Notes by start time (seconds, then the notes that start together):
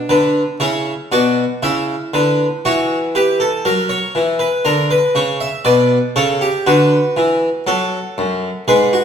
Already playing: D4
0.09 D3 B4
0.60 C#3 E4 C#5
1.12 B2 F#4 D5
1.63 C#3 E4 E5
2.14 D3 B4
2.65 E3 F#4 C#5
3.15 G4 B4
3.40 A4
3.65 F#3 A#4
3.89 C#5
4.15 E3
4.39 B4
4.65 D3 A#4
4.91 B4
5.15 C#3 C#5
5.40 E5
5.65 B2 B4 D5
6.16 C#3 A4 C#5
6.41 G4
6.66 D3 F#4 B4
7.17 E3
7.67 F#3 A4
8.18 F#2
8.68 G#2 G#4 B4
8.93 F#4